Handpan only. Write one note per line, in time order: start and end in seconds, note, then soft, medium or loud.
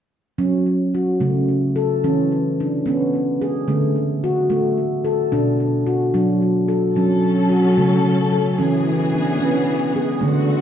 0.38 1.17 F#3 medium
0.38 0.94 C#4 medium
0.95 1.22 F#4 medium
1.20 1.99 C#3 medium
1.20 1.76 A3 medium
1.76 2.03 A4 medium
2.04 2.82 E3 medium
2.04 2.59 C#4 medium
2.60 2.87 D4 medium
2.86 3.64 B3 medium
2.86 3.41 C#4 medium
3.41 3.68 G#4 medium
3.68 4.46 D3 medium
3.68 4.23 A3 medium
4.24 4.51 F#4 medium
4.50 5.28 A3 medium
5.04 5.32 A4 medium
5.32 6.10 B2 medium
5.32 5.87 D4 medium
5.86 6.14 F#4 medium
6.14 6.92 F#3 medium
6.14 6.69 D4 medium
6.68 6.96 A4 medium
6.96 7.74 F#3 medium
6.96 7.50 C#4 medium
7.49 7.77 F#4 medium
7.77 8.55 C#3 medium
7.77 8.32 A3 medium
8.32 8.59 A4 medium
8.59 9.37 E3 medium
8.59 9.13 C#4 medium
9.14 9.41 D4 medium
9.41 10.18 B3 medium
9.41 9.95 C#4 medium
9.96 10.23 G#4 medium
10.21 10.61 D3 medium
10.21 10.61 A3 medium